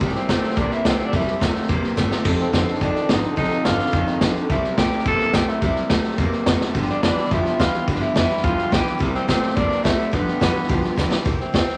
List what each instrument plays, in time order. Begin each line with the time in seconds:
0.00 upright bass G1, steel-string acoustic guitar C3 G3 A#3 E4 G4, clean electric guitar C3 G3, kick, snare
0.08 snare
0.14 steel-string acoustic guitar A#3 E4 G4, tenor saxophone C4, muted upright bass stroke, snare
0.28 clean electric guitar C3 A3, steel-string acoustic guitar G3 A#3 E4 G4, tenor saxophone C4, kick, snare, hi-hat pedal
0.43 steel-string acoustic guitar A#3 E4 G4, snare
0.50 snare
0.56 upright bass A#1, steel-string acoustic guitar C3 G3 A#3 E4 G4, clean electric guitar C3 A#3, tenor saxophone D4, kick, snare
0.71 steel-string acoustic guitar A#3 E4 G4, tenor saxophone E4, muted upright bass stroke, snare
0.85 upright bass C2, clean electric guitar C3 A3, steel-string acoustic guitar G3 A#3 E4 G4, tenor saxophone C4, kick, snare, hi-hat pedal
0.98 steel-string acoustic guitar A#3 E4 G4, muted upright bass stroke, snare
1.05 tenor saxophone D4
1.12 upright bass E2, steel-string acoustic guitar C3 G3 A#3 E4 G4, clean electric guitar C3 G3, tenor saxophone E4, kick, snare
1.20 snare
1.26 steel-string acoustic guitar A#3 E4 G4, muted upright bass stroke, snare
1.40 upright bass D2, clean electric guitar C3 A3, steel-string acoustic guitar G3 A#3 E4 G4, kick, snare, hi-hat pedal
1.54 steel-string acoustic guitar A#3 E4 G4, snare
1.63 snare
1.69 upright bass E2, steel-string acoustic guitar C3 G3 A#3 E4 G4, clean electric guitar C3 A#3, kick, snare
1.83 steel-string acoustic guitar A#3 E4 G4, snare
1.96 upright bass G2, clean electric guitar C3 A3, steel-string acoustic guitar G3 A#3 E4 G4, kick, snare, hi-hat pedal
2.11 steel-string acoustic guitar A#3 E4 G4, snare
2.24 upright bass F2, clean electric guitar F2 C3, steel-string acoustic guitar F3 C4 D#4 A4, kick, snare, splash
2.33 snare
2.39 steel-string acoustic guitar C4 D#4 A4, tenor saxophone C4, snare
2.52 clean electric guitar F2 D3, upright bass F#2, steel-string acoustic guitar F3 C4 D#4 A4, tenor saxophone C4, kick, snare, hi-hat pedal
2.67 steel-string acoustic guitar C4 D#4 A4, snare
2.74 snare
2.81 clean electric guitar F2 D#3, steel-string acoustic guitar F3 C4 D#4 A4, tenor saxophone D4, kick, snare
2.95 steel-string acoustic guitar C4 D#4 A4, snare
3.09 clean electric guitar F2 D3, upright bass G#2, steel-string acoustic guitar F3 C4 D#4 A4, tenor saxophone D#4, kick, snare, hi-hat pedal
3.23 steel-string acoustic guitar C4 D#4 A4, muted upright bass stroke, snare
3.36 clean electric guitar F2 C3, upright bass A2, steel-string acoustic guitar F3 C4 D#4 A4, tenor saxophone D#4, kick, snare
3.43 snare
3.50 steel-string acoustic guitar C4 D#4 A4, snare
3.65 clean electric guitar F2 D3, upright bass G2, steel-string acoustic guitar F3 C4 D#4 A4, tenor saxophone F4, kick, snare, hi-hat pedal
3.79 steel-string acoustic guitar C4 D#4 A4, muted upright bass stroke, snare
3.86 snare
3.91 clean electric guitar F2 D#3, upright bass F2, steel-string acoustic guitar F3 C4 D#4 A4, kick, snare
4.06 steel-string acoustic guitar C4 D#4 A4, snare
4.21 clean electric guitar F2 D3, steel-string acoustic guitar F3 C4 D#4 A4, kick, snare, hi-hat pedal
4.35 steel-string acoustic guitar C4 D#4 A4, muted upright bass stroke, snare
4.49 upright bass C2, clean electric guitar C3 G3, steel-string acoustic guitar C3 G3 A#3 E4 G4, tenor saxophone E4, kick, snare
4.63 steel-string acoustic guitar A#3 E4 G4, muted upright bass stroke, snare
4.77 upright bass A#1, clean electric guitar C3 A3, steel-string acoustic guitar G3 A#3 E4 G4, tenor saxophone G4, kick, snare, hi-hat pedal
4.92 steel-string acoustic guitar A#3 E4 G4, muted upright bass stroke, snare
4.99 snare
5.05 upright bass A1, steel-string acoustic guitar C3 G3 A#3 E4 G4, clean electric guitar C3 A#3, tenor saxophone A4, kick, snare
5.20 steel-string acoustic guitar A#3 E4 G4, muted upright bass stroke, snare
5.33 upright bass A#1, clean electric guitar C3 A3, steel-string acoustic guitar G3 A#3 E4 G4, tenor saxophone G4, kick, snare, hi-hat pedal
5.48 steel-string acoustic guitar A#3 E4 G4, tenor saxophone E4, muted upright bass stroke, snare
5.61 upright bass C2, clean electric guitar C3 G3, steel-string acoustic guitar C3 G3 A#3 E4 G4, tenor saxophone E4, kick, snare
5.75 steel-string acoustic guitar A#3 E4 G4, muted upright bass stroke, snare
5.89 upright bass D2, clean electric guitar C3 A3, steel-string acoustic guitar G3 A#3 E4 G4, kick, snare, hi-hat pedal
6.04 steel-string acoustic guitar E4 G4, snare
6.08 steel-string acoustic guitar A#3, snare
6.18 upright bass E2, steel-string acoustic guitar C3 G3 A#3 E4 G4, clean electric guitar C3 A#3, kick, snare
6.32 steel-string acoustic guitar A#3 E4 G4, muted upright bass stroke, snare
6.46 upright bass F2, clean electric guitar C3 A3, steel-string acoustic guitar G3 A#3 E4 G4, kick, snare, hi-hat pedal
6.61 steel-string acoustic guitar A#3 E4 G4, snare
6.75 upright bass G2, steel-string acoustic guitar G2 D3 F3 B3 F4 G4, clean electric guitar G2 D3, kick, snare
6.82 snare
6.89 steel-string acoustic guitar F3 B3 F4 G4, tenor saxophone D4, muted upright bass stroke, snare
7.03 clean electric guitar G2 E3, steel-string acoustic guitar F3 B3 F4 G4, tenor saxophone D4, kick, snare, hi-hat pedal
7.17 steel-string acoustic guitar F3 B3 F4 G4, muted upright bass stroke, snare
7.25 snare
7.31 upright bass F2, steel-string acoustic guitar G2 D3 F3 B3 F4 G4, clean electric guitar G2 F3, tenor saxophone E4, kick, snare
7.45 steel-string acoustic guitar F3 B3 F4 G4, snare
7.59 upright bass D2, clean electric guitar G2 E3, steel-string acoustic guitar F3 B3 F4 G4, tenor saxophone F4, kick, snare, hi-hat pedal
7.74 steel-string acoustic guitar F3 B3 F4 G4, snare
7.88 steel-string acoustic guitar G2 D3 F3 B3 F4 G4, upright bass G2, clean electric guitar G2 D3, kick, snare
7.95 snare
8.01 steel-string acoustic guitar F3 B3 F4 G4, tenor saxophone E4, muted upright bass stroke, snare
8.15 upright bass F2, clean electric guitar G2 E3, steel-string acoustic guitar F3 B3 F4 G4, tenor saxophone E4, kick, snare, hi-hat pedal
8.29 steel-string acoustic guitar F3 B3 F4 G4, snare
8.37 snare
8.43 upright bass D2, steel-string acoustic guitar G2 D3 F3 B3 F4 G4, clean electric guitar G2 F3, tenor saxophone F4, kick, snare
8.57 steel-string acoustic guitar F3 B3 F4 G4, snare
8.70 upright bass B1, clean electric guitar G2 E3, steel-string acoustic guitar F3 B3 F4 G4, tenor saxophone G4, kick, snare, hi-hat pedal
8.84 steel-string acoustic guitar F3 B3 F4 G4, snare
8.98 upright bass C2, steel-string acoustic guitar C3 G3 A#3 E4 G4, clean electric guitar C3 G3, kick, snare
9.14 steel-string acoustic guitar A#3 E4 G4, tenor saxophone C4, snare
9.28 upright bass A1, clean electric guitar C3 A3, steel-string acoustic guitar G3 A#3 E4 G4, tenor saxophone C4, kick, snare, hi-hat pedal
9.42 steel-string acoustic guitar A#3 E4 G4, muted upright bass stroke, snare
9.50 snare
9.56 upright bass A#1, steel-string acoustic guitar C3 G3 A#3 E4 G4, clean electric guitar C3 A#3, tenor saxophone D4, kick, snare
9.69 steel-string acoustic guitar A#3 E4 G4, muted upright bass stroke, snare
9.83 upright bass C2, clean electric guitar C3 A3, steel-string acoustic guitar G3 A#3 E4 G4, tenor saxophone E4, kick, snare, hi-hat pedal
9.97 steel-string acoustic guitar A#3 E4 G4, muted upright bass stroke, snare
10.11 upright bass G1, steel-string acoustic guitar G2 D3 F3 B3 F4 G4, clean electric guitar G2 D3, tenor saxophone B3, kick, snare
10.26 steel-string acoustic guitar F3 B3 F4 G4, muted upright bass stroke, snare
10.40 upright bass A1, clean electric guitar G2 E3, steel-string acoustic guitar F3 B3 F4 G4, kick, snare, hi-hat pedal
10.54 steel-string acoustic guitar F3 B3 F4 G4, muted upright bass stroke, snare
10.63 snare
10.68 upright bass B1, steel-string acoustic guitar G2 D3 F3 B3 F4 G4, clean electric guitar G2 F3, kick, snare
10.82 steel-string acoustic guitar F3 B3 F4 G4, muted upright bass stroke, snare
10.96 upright bass D2, clean electric guitar G2 E3, steel-string acoustic guitar F3 B3 F4 G4, kick, snare, hi-hat pedal
11.10 steel-string acoustic guitar F3 B3 F4 G4, snare
11.25 upright bass C2, steel-string acoustic guitar C3 G3 A#3 E4 G4, kick, snare
11.39 steel-string acoustic guitar A#3 E4 G4, tenor saxophone C4, muted upright bass stroke, snare
11.53 upright bass D2, steel-string acoustic guitar G3 A#3 E4 G4, tenor saxophone C4, kick, snare, hi-hat pedal
11.67 steel-string acoustic guitar A#3 E4 G4, snare